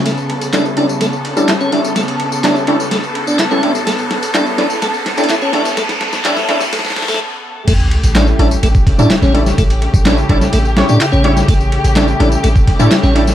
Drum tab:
CC |--------------------------------|--------------------------------|--------------------------------|--------------------------------|
RD |x---x-x-x---x---x---x---x---x---|x-x-x---x---x---x---x---x---x---|x---x-x-x---x---x---x-xxx---x---|x-x-x---x---x---x---x-----------|
TB |x-x---x-x-x---x-x-x---x-x-x---x-|x-x---x-x-x---x-x-x---x-x-x---x-|x-x---x-x-x---x-x-x---x-x-x---x-|x-x---x-x-x---x-x-x---x---------|
CP |--------x---------------x-------|--------x---------------x-------|--------x---------------x-------|--------x-----------------------|
SD |o-------o-------o-------o-------|o-------o-------o-------o-------|o---o---o---o---o---o---o---o---|o-o-o-o-o-o-o-o-oooooooo--------|
BD |--------------------------------|--------------------------------|--------------------------------|--------------------------------|

CC |x-------------------------------|--------------------------------|--------------------------------|
RD |x---x-x-x---x---x---x---x---x---|x-x-x---x---x---x---x---x---x---|x---x-x-x---x---x---x---x---x---|
TB |x-x---x-x-x---x-x-x---x-x-x---x-|x-x---x-x-x---x-x-x---x-x-x---x-|x-x---x-x-x---x-x-x---x-x-x---x-|
CP |--------x---------------x-------|--------x---------------x-------|--------x---------------x-------|
SD |--------o---------------o-o---o-|--------o-----o-----o---------o-|--------o---------------o-o---o-|
BD |o-----------------o-o-----------|o-----o-----o-------------------|o-----------------o-o-----------|